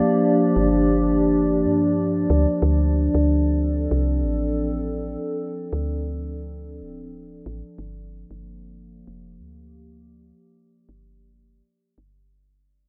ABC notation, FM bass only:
X:1
M:4/4
L:1/16
Q:"Swing 16ths" 1/4=93
K:Gdor
V:1 name="FM bass" clef=bass
z3 G,,,6- G,,, G,,4 D,, z | D,,3 D,,4- D,, C,,2 A,,,6 | z3 D,,6- D,, D,,,4 A,,, z | G,,,3 G,,,4- G,,, F,,,2 D,,6 |
z3 G,,,4- G,,, z2 G,,,6 |]